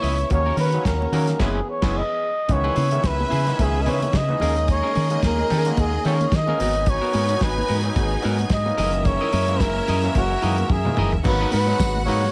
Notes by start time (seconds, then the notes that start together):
Already playing: C#3 E3 G#3 B3 E4 C#5 E5
0.02 C#2 E4 B4 D#5, open hi-hat, low conga
0.18 muted clean electric guitar stroke, closed hi-hat
0.30 D#2 D#3 F#3 A#3 C#4 F#4 C#5, muted clean electric guitar stroke, kick, closed hi-hat, muted conga, low conga
0.46 C#4 F#4 A#4, muted conga
0.57 D#3 C#4 F#4 A#4 B4, open hi-hat, high conga
0.72 D#3 F#3 A#3 C#4, closed hi-hat
0.85 D#2 A#4, kick, snare, closed hi-hat, muted conga
1.00 muted clean electric guitar stroke, muted conga, high conga
1.12 D#3 F#3 A#3 C#4 F#4 A#4, open hi-hat, low conga
1.27 muted clean electric guitar stroke, snare, closed hi-hat
1.38 F#1 E3 G#3 B3 C#4 E4 G#4 B4, kick, snare, crash
1.69 C#5
1.82 F#1 E3 G#3 B3 C#4 E4 G#4 B4, kick, snare, crash
1.98 D#5
2.48 C#2 C#3 D#3 E3 G#3 B3 C#4 B4 E5, muted clean electric guitar stroke, kick, closed hi-hat, low conga
2.52 C#5
2.64 E4 G#4 B4, muted conga
2.75 C#3 E4 G#4 B4, open hi-hat, high conga
2.91 D#3 G#3 B3, muted clean electric guitar stroke, closed hi-hat
2.98 E3
3.04 C#2 B4, kick, snare, closed hi-hat, muted conga
3.19 muted clean electric guitar stroke, muted conga, high conga
3.30 C#3 E4 G#4 B4, open hi-hat, low conga
3.46 D#3 E3 G#3 B3, muted clean electric guitar stroke, snare, closed hi-hat
3.59 C#2 G#4, kick, closed hi-hat, muted conga, high conga
3.73 muted clean electric guitar stroke, muted conga
3.82 E3 E4 D#5
3.86 C#3 D#3 G#3 B3 G#4 B4 C#5, open hi-hat
4.02 muted clean electric guitar stroke, closed hi-hat, high conga
4.12 C#3, muted clean electric guitar stroke, kick, snare, closed hi-hat, muted conga
4.17 D#5
4.28 E3 G#3 B3 D#4, muted clean electric guitar stroke, muted conga, high conga
4.40 D#2 G#3 A#3 C#4 D#4 G#4 A#4 D#5, open hi-hat, low conga
4.57 muted clean electric guitar stroke, closed hi-hat
4.67 C#5, muted clean electric guitar stroke, kick, closed hi-hat, low conga
4.83 C#4 G#4 A#4, muted conga
4.95 D#3 C#4 G#4 A#4, open hi-hat, high conga
5.10 G#3 A#3 C#4 D#4, muted clean electric guitar stroke, closed hi-hat
5.23 D#2 A#4, kick, snare, closed hi-hat
5.38 muted clean electric guitar stroke, high conga
5.50 D#3 C#4 G#4 A#4, open hi-hat, low conga
5.65 G#3 A#3 C#4 F#4, muted clean electric guitar stroke, closed hi-hat
5.77 D#2 G#4, kick, closed hi-hat, high conga
5.93 muted clean electric guitar stroke, muted conga
6.04 D#3 G#3 A#3 C#4 D#4 G#4 A#4 C#5, open hi-hat
6.20 muted clean electric guitar stroke, closed hi-hat, high conga
6.32 D#3 D#5, muted clean electric guitar stroke, kick, snare, closed hi-hat
6.47 G#3 A#3 C#4 D#4 G#4 A#4, muted conga, high conga
6.58 G#1 B2 F#3 B3 D#4 F#4 A#4 B4 G#5, open hi-hat, low conga
6.75 muted clean electric guitar stroke, closed hi-hat
6.86 C#5, muted clean electric guitar stroke, kick, closed hi-hat, muted conga, low conga
7.01 B3 F#4 A#4, muted conga
7.13 G#2 B3 F#4 A#4, open hi-hat, high conga
7.28 F#3 B3 C#4 A#4, closed hi-hat
7.36 D#4
7.41 G#1 B4, kick, snare, closed hi-hat, muted conga
7.56 muted clean electric guitar stroke, muted conga, high conga
7.68 G#2 B3 F#4 A#4, open hi-hat, low conga
7.83 F#3 B3 D#4 A#4, muted clean electric guitar stroke, closed hi-hat
7.96 G#1 G#4, kick, closed hi-hat, muted conga, high conga
8.11 muted clean electric guitar stroke
8.22 G#2 F#3 B3 D#4 F#4 A#4, open hi-hat
8.38 muted clean electric guitar stroke, closed hi-hat, high conga
8.50 G#2 D#5, muted clean electric guitar stroke, kick, snare, closed hi-hat, muted conga
8.65 F#3 A#3 B3 D#4, muted clean electric guitar stroke, high conga
8.77 F#1 C#3 D#3 E3 G#3 A3 C#4 E4 A#4 D#5 E5, open hi-hat, low conga
8.84 A#3
8.93 muted clean electric guitar stroke, closed hi-hat
9.05 C#5, muted clean electric guitar stroke, kick, closed hi-hat, muted conga, low conga
9.21 E4 A#4 D#5, muted conga
9.32 F#2 E4 A#4 D#5, open hi-hat, high conga
9.47 E3 G#3 A#3 E4, muted clean electric guitar stroke, closed hi-hat
9.60 F#1 A#4, kick, snare, closed hi-hat, muted conga
9.77 muted clean electric guitar stroke, high conga
9.88 F#2 E4 A#4 D#5, open hi-hat, low conga
10.02 E3 G#3 A#3 C#4, muted clean electric guitar stroke, snare, closed hi-hat
10.15 F#1 F#4, kick, closed hi-hat, high conga
10.31 muted clean electric guitar stroke
10.41 F#2 D#3 E3 G#3 A#3 E4 A#4 D#5, open hi-hat
10.58 muted clean electric guitar stroke, closed hi-hat, high conga
10.69 F#2 G#4, muted clean electric guitar stroke, kick, high tom
10.85 D#3 E3 G#3 A#3, muted clean electric guitar stroke, mid tom, muted conga, high conga
10.97 F#1 E4 A#4 D#5, mid tom, low conga
11.12 muted clean electric guitar stroke, floor tom
11.24 G#1 B2 F#3 G#3 A#3 B3 D#4 F#4 B4 F#5, muted clean electric guitar stroke, kick, crash, muted conga, low conga
11.40 D#4 F#4 B4, muted conga
11.51 G#2 D#4 F#4 B4, open hi-hat, high conga
11.66 F#3 G#3 B3 D#4, muted clean electric guitar stroke
11.79 G#1, kick, snare, closed hi-hat, tambourine
11.96 muted clean electric guitar stroke, high conga
12.05 G#2 F#3 A#3 B3 D#4 F#4 B4 C#5, open hi-hat, low conga
12.23 muted clean electric guitar stroke, snare